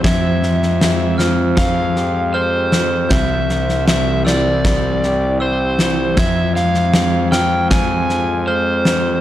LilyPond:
<<
  \new Staff \with { instrumentName = "Glockenspiel" } { \time 4/4 \key f \lydian \tempo 4 = 78 aes'''4 r8 f'''4 r8 f'''4 | g'''4 r8 e'''4 r8 e'''4 | aes'''4 r8 f'''4 r8 f'''4 | }
  \new Staff \with { instrumentName = "Electric slide guitar" } { \time 4/4 \key f \lydian e''4. r8 f''4 c''4 | e''4 e''8 d''4. c''4 | e''8 f''4 g''8 aes''4 c''4 | }
  \new Staff \with { instrumentName = "Analog synth pad" } { \time 4/4 \key f \lydian << { c''1~ | c''1~ | c''1 | } \\ { <aes c' f'>1 | e'1 | <aes c' f'>1 | } >> }
  \new Staff \with { instrumentName = "Clean electric guitar" } { \clef bass \time 4/4 \key f \lydian f,4 aes8 f8 aes8 g'8 aes8 f8 | c4 g8 e8 g8 g'8 g8 e8 | f,4 aes8 f8 aes4 aes8 f8 | }
  \new Staff \with { instrumentName = "Fingered electric bass" } { \clef bass \time 4/4 \key f \lydian f,1 | c,1 | f,1 | }
  \new DrumStaff \with { instrumentName = "Drums" } \drummode { \time 4/4 <bd sn>8 sn16 sn16 sn8 sn8 <bd sn>8 sn8 r8 sn8 | <bd sn>8 sn16 sn16 sn8 sn8 <bd sn>8 sn8 r8 sn8 | <bd sn>8 sn16 sn16 sn8 sn8 <bd sn>8 sn8 r8 sn8 | }
>>